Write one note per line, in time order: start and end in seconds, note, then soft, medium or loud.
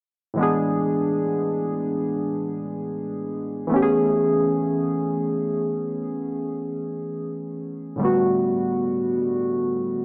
0.34 3.65 A2 medium
0.34 3.66 E3 medium
0.34 3.67 G#3 medium
0.39 3.68 B3 medium
0.39 3.68 D4 medium
0.39 3.69 G#4 medium
3.67 7.46 E3 medium
3.67 7.47 A3 medium
3.72 7.48 B3 medium
3.72 7.49 C#4 medium
3.76 3.80 G4 medium
3.82 7.54 G#4 medium
7.96 10.05 A2 medium
7.96 10.05 D3 medium
7.96 10.05 G3 medium
8.01 10.05 A3 medium
8.01 10.05 B3 medium
8.01 10.05 F#4 medium